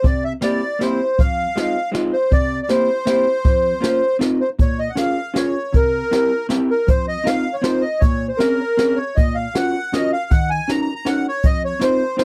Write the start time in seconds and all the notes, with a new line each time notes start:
0.03 C3 D5, kick, closed hi-hat
0.25 E5
0.41 A#3 C4 E4 G4 D5, snare, closed hi-hat
0.79 A#3 C4 E4 G4 C5, snare, closed hi-hat
1.18 F2 F5, kick, closed hi-hat
1.56 G#3 C4 D#4 F4, snare, closed hi-hat
1.92 G#3 C4 D#4 F4, snare, closed hi-hat
2.13 C5
2.31 C3 D5, kick, closed hi-hat
2.63 D5
2.69 A#3 C4 E4 G4 C5, snare, closed hi-hat
3.05 A#3 C4 E4 G4, snare, closed hi-hat
3.44 F2, kick, closed hi-hat
3.80 A#3 C#4 F4 A#4, snare, closed hi-hat
4.19 C4 D#4 F4 A#4, snare, closed hi-hat
4.41 C5
4.59 A#2 C#5, kick, closed hi-hat
4.79 D#5
4.90 F#5
4.95 C#4 F4 G#4 A#4 F5, snare, closed hi-hat
5.34 C#4 F4 G#4 A#4 C#5, snare, closed hi-hat
5.73 C3 A#4, kick, closed hi-hat
6.11 C4 E4 G4 A#4, snare, closed hi-hat
6.49 C4 E4 G4 A#4, snare, closed hi-hat
6.71 A#4
6.87 F2 C5, kick, closed hi-hat
7.08 D#5
7.24 C4 D#4 F4 A#4 F5, snare, closed hi-hat
7.54 C#5
7.62 C4 D#4 F4 A#4 C5, snare, closed hi-hat
7.81 D#5
8.00 A#2 C#5, kick, closed hi-hat
8.28 C5
8.38 C4 C#4 G#4 A#4, snare, closed hi-hat
8.77 C4 C#4 G#4 A#4, snare, closed hi-hat
8.96 C#5
9.16 A#2 D#5, kick, closed hi-hat
9.35 F5
9.55 C#4 F4 F#4 A#4 F#5, snare, closed hi-hat
9.93 C#4 F4 F#4 A#4 D#5, snare, closed hi-hat
10.13 F5
10.31 D#3 F#5, kick, closed hi-hat
10.50 G#5
10.68 C#4 D#4 F#4 A#4 A#5, snare, closed hi-hat
10.82 A#5
10.96 A#5
11.05 C#4 D#4 F#4 A#4 F#5, snare, closed hi-hat
11.28 C#5
11.43 F2 D#5, kick, closed hi-hat
11.65 C#5
11.79 C4 D#4 F4 A#4 C5, snare, closed hi-hat
12.17 C4 D#4 F4 A#4 C5, snare, closed hi-hat